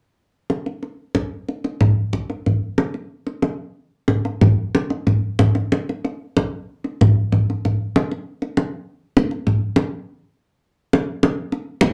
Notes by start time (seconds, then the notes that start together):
0.50 kendang high
0.66 kendang slap
0.83 kendang slap
1.15 kendang high, kendang low
1.49 kendang slap
1.64 kendang slap
1.81 kendang slap, kendang low
2.13 kendang slap, kendang low
2.30 kendang slap
2.46 kendang slap, kendang low
2.78 kendang slap, kendang high
2.94 kendang slap
3.27 kendang slap
3.42 kendang slap, kendang high
4.08 kendang slap, kendang high, kendang low
4.25 kendang slap
4.41 kendang slap, kendang low
4.75 kendang slap, kendang high
4.90 kendang slap
5.07 kendang slap, kendang low
5.39 kendang slap, kendang high, kendang low
5.55 kendang slap
5.72 kendang high
5.89 kendang slap
6.05 kendang slap
6.37 kendang high, kendang low
6.84 kendang slap
7.01 kendang slap, kendang low
7.32 kendang slap, kendang low
7.50 kendang slap
7.65 kendang slap, kendang low
7.96 kendang slap, kendang high
8.11 kendang slap
8.42 kendang slap
8.57 kendang slap, kendang high
9.17 kendang slap, kendang high, kendang low
9.31 kendang slap
9.47 kendang slap, kendang low
9.76 kendang slap, kendang high
10.93 kendang slap, kendang high
11.23 kendang slap, kendang high
11.52 kendang slap
11.81 kendang low